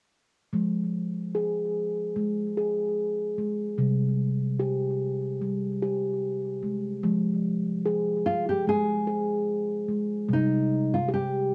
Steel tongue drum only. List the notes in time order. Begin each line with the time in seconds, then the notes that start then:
0.53 F3 G#3
1.35 G#4
2.16 G#3
2.57 G#4
3.38 G#3
3.78 C3 G3
4.60 G4
5.42 G3
5.83 G4
6.63 G#3
7.03 F3 G#3
7.86 G#4
8.67 G#3
9.07 G#4
9.88 G#3
10.28 C3 G3
11.09 G4